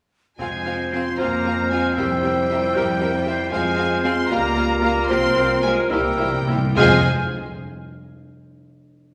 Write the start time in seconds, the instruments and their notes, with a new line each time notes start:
0.39 timpani F2, double bass section F2, cello section G#3, french horn section C4 F4, bassoon C4, viola section C4 F4, violin section G#4 F5 G#5, oboe C5, flute G#6
0.66 viola section C4 F4, violin section G#4 F5
0.92 cello section C4, viola section C4 F4, violin section G#4 F5 C6
1.18 double bass section F2, cello section A#3, viola section C4 F4, violin section G#4 F5 A#5, oboe C5, flute F6
1.45 viola section C4 F4, violin section G#4 F5
1.71 cello section G#3, viola section C4 F4, violin section G#4 F5 G#5
1.96 timpani F2, double bass section F2, cello section G3, viola section C4 G4, french horn section E4, violin section A#4 E5 G5, flute E6
2.23 viola section C4 G4, violin section A#4 E5
2.49 viola section C4 G4, violin section A#4 E5
2.74 double bass section F2, viola section C4 G4, violin section A#4 E5, oboe A#4, flute G6
3.00 viola section C4 G4, oboe A#4, violin section A#4 E5
3.26 viola section C4 G4, violin section A#4 E5, oboe C5
3.51 double bass section F2, cello section G#3, bassoon G#3, viola section C4 F4, french horn section C4 F4, violin section G#4 F5 G#5, oboe C5, flute F6
3.77 viola section C4 F4, violin section G#4 F5
4.04 cello section C4, viola section C4 F4, violin section G#4 F5 C6
4.29 double bass section C#2, bassoon G3, cello section A#3, viola section A#3 F4, french horn section A#3, violin section F4 F5 A#5, oboe A#4
4.55 viola section A#3 F4, violin section F4 F5
4.82 viola section A#3 F4, cello section A#3, violin section F4 F5 A#5
5.08 double bass section C2, bassoon F3, viola section A#3 F4, cello section C4, violin section G4 C5 C6, oboe A#4
5.36 viola section A#3 F4, violin section G4 C5
5.63 cello section G#3, viola section A#3 F4, violin section G4 C5 G#5
5.90 double bass section C2, timpani C3, cello section G3, bassoon G3, viola section A#3 E4, french horn section E4, violin section G4 C5 G5, oboe A#4, flute E6
6.00 timpani C3
6.08 timpani C3
6.16 timpani C3, viola section A#3 E4
6.20 timpani C3, violin section G4 C5
6.32 timpani C3
6.41 timpani C3
6.47 timpani C3, viola section A#3 E4, violin section G4 C5
6.57 timpani C3
6.65 timpani C3
6.76 timpani F2, double bass section F2, viola section G#3 F4, cello section G#3, bassoon G#3, french horn section C4 F4, violin section G#4 C5 G#5, oboe C5, flute F6